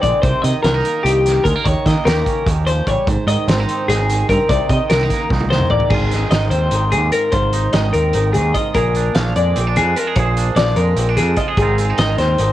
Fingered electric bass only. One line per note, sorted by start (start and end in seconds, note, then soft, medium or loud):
0.03 0.11 A#1 medium
0.23 0.31 C2 medium
0.44 0.52 C3 medium
0.64 0.81 C2 loud
1.04 1.38 C2 loud
1.45 1.53 D2 medium
1.66 1.74 D#2 medium
1.86 1.94 D#3 medium
2.06 2.23 D#2 loud
2.46 2.80 D#2 loud
2.87 2.96 A1 medium
3.07 3.16 G#1 medium
3.27 3.35 G#2 medium
3.47 3.65 G#1 loud
3.88 4.22 G#1 medium
4.30 4.38 G2 medium
4.50 4.58 C2 medium
4.70 4.78 C3 medium
4.91 5.07 C2 loud
5.31 5.64 C2 medium
5.70 5.79 A1 medium
5.90 6.25 G#1 medium
6.31 6.48 G#1 medium
6.51 6.68 D#2 medium
6.71 6.94 G#1 medium
6.93 7.10 D#2 medium
7.33 7.67 G#1 medium
7.74 7.91 G#1 medium
7.95 8.11 D#2 medium
8.15 8.36 G#1 medium
8.35 8.52 D#2 medium
8.75 9.09 A#1 medium
9.15 9.32 A#1 medium
9.36 9.53 F2 medium
9.57 9.78 A#1 medium
9.77 9.93 F2 medium
10.16 10.50 A#1 medium
10.56 10.73 A#1 medium
10.76 10.93 F2 medium
10.96 11.18 A#1 medium
11.17 11.34 F2 medium
11.57 11.91 G#1 medium
11.98 12.15 G#1 medium
12.18 12.35 D#2 medium
12.39 12.53 G#1 medium